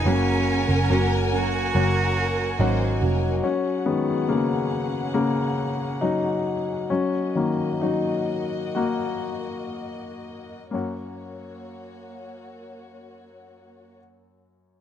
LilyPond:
<<
  \new Staff \with { instrumentName = "Violin section" } { \time 4/4 \key fis \major \tempo 4 = 67 ais'2 ais'4 bis'8 ais'8 | r1 | r1 | r1 | }
  \new Staff \with { instrumentName = "String section" } { \time 4/4 \key fis \major <ais' fis'' gis''>1 | <cis' gis' fis''>1 | <ais fis' dis''>1 | <ais fis' cis''>1 | }
  \new Staff \with { instrumentName = "Cello" } { \time 4/4 \key fis \major cis'4 cis'8 fis'2 r8 | r1 | r1 | r1 | }
  \new Staff \with { instrumentName = "Grand piano" } { \time 4/4 \key fis \major << { <fis ais cis' fis'>4 <fis ais cis' fis'>4 <fis ais cis' fis'>4 <fis ais cis' dis' fis'>4 | <fis cis'>8 <dis b>8 <cis ais>4 <cis ais>4 <fis dis'>4 | <fis cis'>4 <fis dis'>4 <ais fis'>4. r8 | <ais cis' fis'>1 | } \\ { cis4. r2 r8 | r8 <fis gis cis'>2.~ <fis gis cis'>8 | r8 <dis fis ais>2.~ <dis fis ais>8 | fis,1 | } >> }
  \new Staff \with { instrumentName = "Nylon-string guitar" } { \time 4/4 \key fis \major <fis, cis fis ais cis' fis'>4 <fis ais cis' fis'>8 <fis ais cis' fis'>8 <fis ais cis' fis'>4 <fis ais cis' fis'>8 <fis ais cis' fis'>8 | r1 | r1 | r1 | }
  \new Staff \with { instrumentName = "Picked electric bass" } { \clef bass \time 4/4 \key fis \major fis,,8. fis,,16 fis,,4 fis,,4 gis,,8 eis,,8 | r1 | r1 | r1 | }
>>